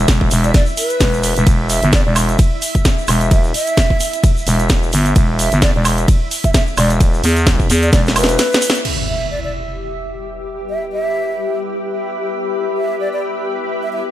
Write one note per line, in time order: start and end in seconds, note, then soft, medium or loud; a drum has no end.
0.00 8.85 E5 loud
0.08 0.30 E1 medium
0.08 kick loud
0.08 snare loud
0.08 closed hi-hat soft
0.08 ride medium
0.08 shaker soft
0.21 kick medium
0.31 0.53 E1 loud
0.31 open hi-hat loud
0.31 shaker loud
0.44 0.51 D5 medium
0.44 closed hi-hat medium
0.44 shaker soft
0.54 0.63 D5 medium
0.54 kick loud
0.54 snare medium
0.54 closed hi-hat medium
0.54 ride medium
0.54 shaker medium
0.66 shaker soft
0.77 1.43 B4 loud
0.77 open hi-hat loud
0.77 shaker medium
0.89 closed hi-hat medium
0.89 shaker soft
1.00 1.34 E1 medium
1.00 kick loud
1.00 snare loud
1.00 open hi-hat medium
1.00 ride medium
1.00 shaker medium
1.13 shaker soft
1.23 open hi-hat loud
1.23 shaker medium
1.37 1.45 E1 medium
1.37 closed hi-hat medium
1.37 shaker soft
1.47 1.81 E1 medium
1.47 kick loud
1.47 closed hi-hat medium
1.47 ride medium
1.47 shaker medium
1.69 1.91 E5 medium
1.69 open hi-hat loud
1.69 shaker medium
1.82 2.04 G1 loud
1.82 closed hi-hat medium
1.82 shaker soft
1.93 2.01 D5 medium
1.93 kick loud
1.93 snare loud
1.93 closed hi-hat medium
1.93 ride medium
1.93 shaker medium
2.06 2.37 E1 loud
2.06 2.12 D5 medium
2.16 open hi-hat loud
2.16 high woodblock medium
2.16 shaker medium
2.29 closed hi-hat medium
2.29 shaker soft
2.39 kick loud
2.39 closed hi-hat medium
2.39 ride medium
2.39 shaker medium
2.62 open hi-hat loud
2.62 shaker loud
2.75 kick medium
2.75 closed hi-hat medium
2.75 shaker soft
2.85 kick loud
2.85 snare loud
2.85 closed hi-hat soft
2.85 ride medium
2.85 shaker medium
2.98 shaker soft
3.08 3.53 E1 loud
3.08 open hi-hat loud
3.08 high woodblock medium
3.08 shaker loud
3.21 closed hi-hat medium
3.21 shaker soft
3.31 3.44 E5 loud
3.31 kick loud
3.31 closed hi-hat medium
3.31 ride medium
3.31 shaker medium
3.44 shaker soft
3.54 4.20 E5 loud
3.54 open hi-hat loud
3.54 shaker medium
3.67 closed hi-hat medium
3.67 shaker soft
3.77 kick loud
3.77 snare loud
3.77 closed hi-hat medium
3.77 ride medium
3.77 shaker medium
3.90 kick medium
4.00 open hi-hat loud
4.00 shaker medium
4.13 closed hi-hat medium
4.13 shaker soft
4.24 kick loud
4.24 closed hi-hat medium
4.24 ride medium
4.24 shaker medium
4.37 shaker soft
4.47 4.91 E1 loud
4.47 open hi-hat loud
4.47 shaker medium
4.59 closed hi-hat medium
4.59 shaker soft
4.69 kick loud
4.69 snare loud
4.69 closed hi-hat medium
4.69 ride medium
4.69 shaker medium
4.83 shaker soft
4.93 5.14 G1 loud
4.93 open hi-hat loud
4.93 shaker loud
5.06 closed hi-hat medium
5.06 shaker soft
5.16 5.50 E1 loud
5.16 kick loud
5.16 closed hi-hat medium
5.16 ride medium
5.16 shaker medium
5.39 5.60 E5 medium
5.39 open hi-hat loud
5.39 shaker medium
5.52 5.73 G1 medium
5.52 closed hi-hat medium
5.52 shaker soft
5.62 5.70 D5 medium
5.62 kick loud
5.62 snare loud
5.62 closed hi-hat medium
5.62 ride medium
5.62 shaker medium
5.75 6.07 E1 loud
5.75 5.81 D5 medium
5.85 open hi-hat loud
5.85 high woodblock medium
5.85 shaker medium
5.98 closed hi-hat medium
5.98 shaker soft
6.08 kick loud
6.08 closed hi-hat medium
6.08 ride medium
6.08 shaker soft
6.31 open hi-hat loud
6.31 shaker medium
6.44 6.51 E5 medium
6.44 kick medium
6.44 closed hi-hat medium
6.44 shaker soft
6.54 6.63 E5 medium
6.54 kick loud
6.54 snare loud
6.54 closed hi-hat medium
6.54 ride medium
6.54 shaker medium
6.67 shaker soft
6.77 7.22 E1 loud
6.77 6.90 D5 medium
6.77 open hi-hat loud
6.77 high woodblock medium
6.77 shaker medium
6.90 closed hi-hat medium
6.90 shaker soft
7.00 kick loud
7.00 closed hi-hat medium
7.00 ride medium
7.00 shaker soft
7.14 shaker soft
7.24 7.68 E2 loud
7.24 open hi-hat loud
7.24 shaker medium
7.36 closed hi-hat medium
7.36 shaker soft
7.46 kick loud
7.46 snare loud
7.46 closed hi-hat medium
7.46 ride medium
7.46 shaker soft
7.59 kick medium
7.59 shaker soft
7.70 7.91 E2 loud
7.70 open hi-hat loud
7.70 shaker loud
7.82 7.89 D5 medium
7.82 closed hi-hat medium
7.82 shaker soft
7.93 8.37 E1 loud
7.93 8.01 D5 medium
7.93 kick loud
7.93 snare medium
7.93 closed hi-hat medium
7.93 ride medium
7.93 shaker medium
8.06 snare medium
8.06 shaker soft
8.16 8.81 B4 loud
8.16 open hi-hat loud
8.16 high woodblock medium
8.16 shaker medium
8.24 snare medium
8.29 closed hi-hat medium
8.29 shaker soft
8.38 snare medium
8.38 open hi-hat medium
8.38 ride medium
8.38 shaker medium
8.52 snare loud
8.52 shaker soft
8.62 open hi-hat loud
8.62 shaker medium
8.70 snare loud
8.75 closed hi-hat medium
8.75 shaker soft
8.85 14.11 G4 medium
8.85 crash medium
8.85 impact medium
9.05 14.11 E5 medium
9.05 9.29 E5 medium
9.24 14.11 B4 medium
9.31 9.40 D5 medium
9.44 9.51 D5 medium
9.98 14.11 B5 medium
10.70 10.82 E5 medium
10.93 11.58 E5 medium
12.77 12.98 E5 medium
13.00 13.09 D5 medium
13.13 13.20 D5 medium
13.83 13.89 E5 medium
13.93 14.01 E5 medium